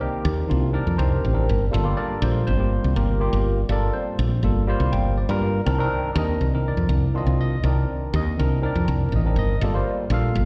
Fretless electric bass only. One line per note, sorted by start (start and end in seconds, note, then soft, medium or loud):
0.25 0.45 D#2 loud
0.51 0.81 C2 medium
0.87 0.97 F2 medium
0.99 1.19 C2 medium
1.25 1.46 A1 medium
1.49 1.71 G1 medium
1.74 1.94 G1 loud
2.22 2.42 A#1 loud
2.47 2.78 G1 medium
2.84 2.94 C2 medium
2.96 3.27 G1 medium
3.33 3.63 G1 medium
3.69 3.90 G1 medium
4.19 4.39 A#1 medium
4.43 4.74 G1 medium
4.80 4.91 C2 medium
4.93 5.24 G1 medium
5.29 5.60 G2 medium
5.66 5.87 C2 loud
6.15 6.36 D#2 loud
6.41 6.72 C2 medium
6.77 6.88 F2 medium
6.89 7.20 C2 loud
7.26 7.58 C2 medium
7.64 7.85 C2 medium
8.14 8.34 D#2 loud
8.39 8.70 C2 medium
8.75 8.86 F2 medium
8.88 9.09 C2 medium
9.12 9.35 A1 medium
9.36 9.59 G1 medium
9.61 9.82 G1 medium
10.10 10.31 A#1 medium
10.35 10.45 G1 medium